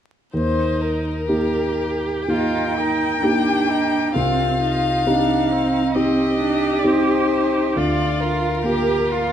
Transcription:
0.33 D#2 D#4 C5
0.81 A#4
1.28 A#3 D#4 G4
2.27 A#3 D#4 F4 G4 G5
2.31 D#4
2.77 D#4 A#4
3.22 A#3 D4 D#4 G4
3.70 D#4
4.15 C2 C4 F4 F5
4.61 D#4
5.07 C4 D4 D#4 G4
5.51 C4
5.95 C4 D#4 G4 D#5
6.39 D4
6.79 D5
6.84 C4 D#4 G4 C5
7.76 D2 F4 D5
8.21 A#4
8.64 A#3 F4 G4 A#4
9.11 F4

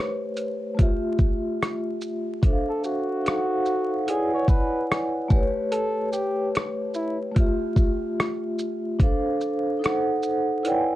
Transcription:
Already playing: A3 G4 B4 C#5
0.37 closed hi-hat, shaker
0.75 A3 F4
0.79 G4 E5, kick, closed hi-hat
1.19 kick, shaker
1.63 cross-stick, closed hi-hat
2.01 shaker
2.42 D4 A4 C5 E5, kick, closed hi-hat
2.52 F5
2.69 A4
2.84 F#4, shaker
3.24 D#4 A4 C5 F5, cross-stick, closed hi-hat
3.35 F#5
3.66 shaker
4.07 E4 G#4 B4 C#5 D5 F#5 G#5, closed hi-hat
4.34 C#5
4.48 B4, kick, shaker
4.92 cross-stick, closed hi-hat
5.28 A3 G4, kick, shaker
5.34 B4 C#5
5.72 A4, closed hi-hat
6.12 G4, shaker
6.55 cross-stick, closed hi-hat
6.94 E4, shaker
7.32 A3 F4
7.36 G4 E5, kick, closed hi-hat
7.76 kick, shaker
8.20 cross-stick, closed hi-hat
8.59 shaker
8.99 D4 A4 C5 F5, kick, closed hi-hat
9.41 shaker
9.79 D#4 A4 C5
9.84 F#5, cross-stick, closed hi-hat
10.23 shaker
10.63 E4 B4 C#5 D5 F#5, closed hi-hat
10.67 G5
10.74 G#5

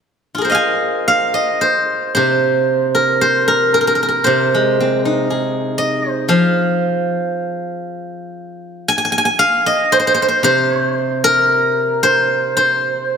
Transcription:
0.35 F4 G#4
0.41 A#4 C5
0.50 D#5 F5
0.55 G#5
1.08 F5
1.34 D#5
1.61 C5
2.15 C3 C5
2.95 A#4
3.21 C5
3.48 A#4
3.74 A#4
3.81 A#4
3.87 A#4
3.95 A#4
4.03 A#4
4.08 A#4
4.24 C3 C5
4.54 G#3
4.80 C4
5.01 B4
5.05 D#4
5.20 A#4
5.30 G#4
5.78 D#5
6.10 C5
6.29 F3 F5
8.88 G#5
8.98 G#5
9.05 G#5
9.12 G#5
9.18 G#5
9.25 G#5
9.39 F5
9.66 D#5
9.92 C5
9.99 C5
10.07 C5
10.14 C5
10.22 C5
10.28 C5
10.43 C3 C5
11.24 A#4
12.03 C5
12.57 C5

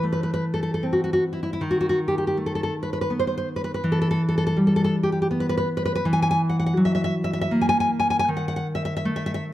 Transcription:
Already playing: E3
0.03 A3
0.13 B4
0.23 B4
0.34 B4
0.54 A4
0.63 A4
0.74 A4
0.83 C4
0.93 F#4
1.04 F#4
1.13 F#4
1.33 E4
1.43 E4
1.53 E4
1.61 D#3
1.71 F#4
1.81 F#4
1.89 F#4
2.08 G4
2.18 G4
2.27 G4
2.37 A3
2.46 A4
2.55 A4
2.63 A4
2.83 B4
2.93 B4
3.01 B4
3.10 B3
3.19 C5
3.27 C5
3.38 C5
3.56 B4
3.64 B4
3.74 B4
3.84 E3
3.92 A4
4.02 A4
4.11 A4
4.29 A4
4.38 A4
4.47 A4
4.57 G3
4.67 A4
4.76 A4
4.84 A4
5.03 G4
5.12 G4
5.22 G4
5.31 B3
5.40 B4
5.49 B4
5.57 B4
5.77 B4
5.85 B4
5.95 B4
6.05 E3
6.13 G#5
6.22 G#5
6.31 G#5
6.49 F#5
6.60 F#5
6.66 F#5
6.77 F#3
6.85 E5
6.95 E5
7.04 E5
7.24 E5
7.33 E5
7.41 E5
7.51 A#3
7.61 G#5
7.69 G#5
7.80 G#5
8.00 G#5
8.10 G#5
8.19 G#5
8.28 D#3
8.37 F#5
8.48 F#5
8.56 F#5
8.75 E5
8.85 E5
8.97 E5
9.05 A3
9.16 E5
9.26 E5
9.34 E5

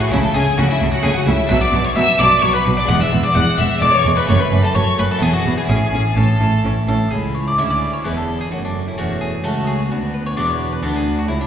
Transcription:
0.00 F#4 F#5
0.07 A3 C#4 E4
0.11 C#2 C#3 A3 E4 E5
0.23 A4 A5
0.34 C#2 C#3 A3 G#4 G#5
0.57 C#2 C#3 A3 F#4 F#5
0.69 E4 E5
0.80 C#2 C#3 A3
0.92 F#4 F#5
1.03 C#2 C#3 A3 G#4 G#5
1.14 F#4 F#5
1.26 C#2 C#3 A3 E4 E5
1.47 B1 B2 F#3 D4 B4 E5 E6
1.61 D5 D6
1.72 B1 B2 F#3
1.84 C#5 C#6
1.96 B1 B2 F#3 E5 E6
2.19 B1 B2 F#3 D5 D6
2.42 B1 B2 F#3 C#5 C#6
2.53 B4 B5
2.65 B1 B2 F#3
2.77 D5 D6
2.84 G#3 D4 B4
2.88 E1 E2 G#3 F#5 F#6
3.00 E5 E6
3.12 E1 E2 G#3
3.23 D5 D6
3.34 E1 E2 G#3 F#5 F#6
3.58 E1 E2 G#3 E5 E6
3.81 E1 E2 G#3 D5 D6
3.93 C#5 C#6
4.05 E1 E2 G#3
4.17 B4 B5
4.24 A3 C#4 A4 C#5 C#6
4.28 F#1 F#2 A3 C#5
4.39 B4 B5
4.51 F#1 F#2 A3
4.63 A4 A5
4.74 F#1 F#2 A3 C#5 C#6
4.98 F#1 F#2 A3 B4 B5
5.11 A4 A5
5.17 B3 E4
5.21 E1 E2 B3 G#4 G#5
5.33 F#4 F#5
5.44 E1 E2 B3
5.57 G#4 G#5
5.64 C#4 E4
5.68 A1 A2 C#4 G#4 G#5
5.92 A1 A2 C#4
6.16 A1 A2 C#4 A4 A5
6.40 A1 A2 C#4
6.63 A1 A2 C#4
6.87 A1 A2 C#4 A4
7.10 C#2 E4 G#4 G#5
7.35 C#5
7.48 D5
7.58 D2 G#3 C#4 E4 E5 G#5
7.70 D5
7.93 C#5
8.04 E1 E2 G#3 B3 C#4 E4 B4
8.17 A4
8.41 G#4
8.51 F#1 F#2 A3 C#4 F#4
8.65 D4
8.88 E4
8.98 E1 E2 A3 C#4 F#4 A5
9.21 G#4
9.44 C#2 A3 C#4 F#4 A4 F#5
9.67 G#4
9.90 D2 B3 D4 F#4 F#5
10.14 B4
10.26 C#5
10.36 E1 E2 B3 D4 F#4 D5 B5
10.49 C#5
10.73 B4
10.83 D2 B3 D4 F#4 A4
10.96 G#4
11.19 F#4
11.28 C#2 C#4 E4 A5
11.41 D4

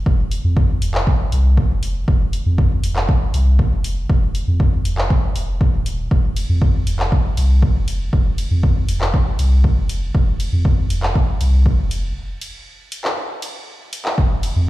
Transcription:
0.06 F1, kick
0.31 open hi-hat
0.44 F2
0.57 kick
0.82 F1, open hi-hat
0.94 clap
1.07 kick
1.32 C2, open hi-hat
1.57 kick
1.70 F1
1.83 open hi-hat
2.08 F1, kick
2.33 open hi-hat
2.46 F2
2.58 kick
2.83 F1, open hi-hat
2.96 clap
3.09 kick
3.34 C2, open hi-hat
3.59 kick
3.72 F1
3.84 open hi-hat
4.10 F1, kick
4.35 open hi-hat
4.47 F2
4.60 kick
4.85 F1, open hi-hat
4.98 clap
5.10 kick
5.36 F1, open hi-hat
5.61 kick
5.73 D#1
5.86 open hi-hat
6.11 F1, kick
6.36 open hi-hat, ride
6.49 F2
6.62 kick
6.87 F1, open hi-hat, ride
7.00 clap
7.12 kick
7.37 C2, open hi-hat, ride
7.63 kick
7.75 F1
7.88 open hi-hat, ride
8.13 F1, kick
8.38 open hi-hat, ride
8.51 F2
8.63 kick
8.88 F1, open hi-hat, ride
9.01 clap
9.14 kick
9.39 C2, open hi-hat, ride
9.64 kick
9.77 F1
9.89 open hi-hat, ride
10.15 F1, kick
10.40 open hi-hat, ride
10.52 F2
10.65 kick
10.90 F1, open hi-hat, ride
11.03 clap
11.15 kick
11.41 C2, open hi-hat, ride
11.66 kick
11.78 F1
11.91 open hi-hat, ride
12.41 open hi-hat, ride
12.92 open hi-hat, ride
13.05 clap
13.42 open hi-hat, ride
13.93 open hi-hat, ride
14.05 clap
14.18 F1, kick
14.43 open hi-hat, ride
14.56 F2

